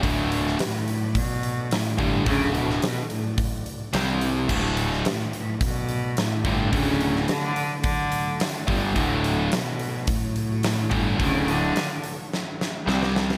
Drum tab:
CC |----------------|----------------|x---------------|----------------|
HH |o-o-o-o-o-o-o-o-|o-o-o-o-o-o-o-o-|--o-o-o-o-o-o-o-|o-o-o-o-o-o-o-o-|
SD |---oo-------o---|---oo-------o---|---oo-------o---|---oo-------o---|
BD |o-------o-----o-|o-------o-------|o-------o-----o-|o-------o-----o-|

CC |----------------|----------------|
HH |o-o-o-o-o-o-o-o-|o-o-o-o---------|
SD |----o-------o---|----o---o-o-oooo|
BD |o-------o-----o-|o---------------|